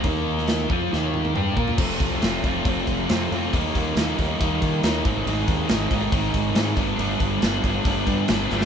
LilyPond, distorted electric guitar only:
\new Staff \with { instrumentName = "Distorted electric guitar" } { \clef bass \time 4/4 \key f \major \tempo 4 = 138 <ees bes ees'>4. <f c' f'>8 <ees bes ees'>4 <g d' g'>8 <bes f' bes'>8 | <f, c f a c' f'>4 <f, c f a c' f'>8 <f, c f a c' f'>8 <f, c f a c' f'>4 <f, c f a c' f'>8 <f, c f a c' f'>8 | <ees g bes ees'>4 <ees g bes ees'>8 <ees g bes ees'>8 <ees g bes ees'>4 <ees g bes ees'>8 <aes, ees aes c' ees'>8 | <aes, ees aes c' ees'>4 <aes, ees aes c' ees'>8 <aes, ees aes c' ees'>8 <aes, ees aes c' ees'>4 <aes, ees aes c' ees'>8 <g, d g b d'>8 |
<g, d g b d'>4 <g, d g b d'>8 <g, d g b d'>8 <g, d g b d'>4 <g, d g b d'>8 <g, d g b d'>8 | }